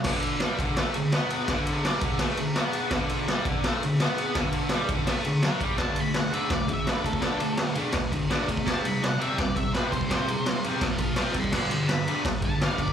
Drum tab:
CC |x---------------|----------------|----------------|----------------|
RD |--x-x-x-x-x-x-x-|x-x-x-x-x-x-x-x-|x-x-x-x-x-x-x-x-|x-x-x-x-x-x-x-x-|
SD |o---o---o---o---|o---o---o---o---|o---o---o---o---|o---o---o---o---|
BD |o-----o---------|o-----o---------|o-----o---------|o-----o-------o-|

CC |----------------|----------------|----------------|----------------|
RD |x-x-x-x-x-x-x-x-|x-x-x-x-x-x-x-x-|x-x-x-x-x-x-x-x-|x-x-x-x-x-x-x-x-|
SD |o---o---o---o---|o---o---o---o---|o---o---o---o---|o---o---o---o---|
BD |o-------o-o---oo|o-------o-o---oo|o-------o-o---oo|o-------o-o---oo|

CC |x---------------|
RD |--x-x-x-x-x-x-x-|
SD |o---o---o---o---|
BD |o-------o-o---oo|